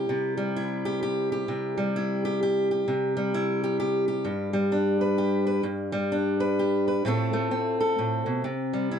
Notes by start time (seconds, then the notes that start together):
Already playing: G3 E4 G4
0.09 C3
0.37 G3
0.56 E4
0.85 G4
1.03 G4
1.32 G4
1.48 C3
1.78 G3
1.96 E4
2.25 G4
2.43 G4
2.71 G4
2.88 C3
3.17 G3
3.34 E4
3.64 G4
3.80 G4
4.08 G4
4.25 G2
4.53 G3
4.72 D4
5.01 B4
5.18 G4
5.47 B4
5.63 G2
5.92 G3
6.12 D4
6.40 B4
6.59 G4
6.88 B4
7.05 A2 A3 C4 F4 A4
7.33 A3
7.51 C4
7.80 A4
7.99 A2
8.26 B2
8.44 C3
8.73 G3
8.91 E4